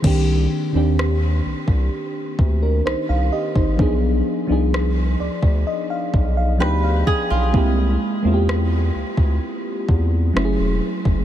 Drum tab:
CC |x---------------|----------------|----------------|
SD |----r-------r---|----r-------r---|----r-------r---|
BD |o------o--o----o|o------o--o---o-|o------o--o----o|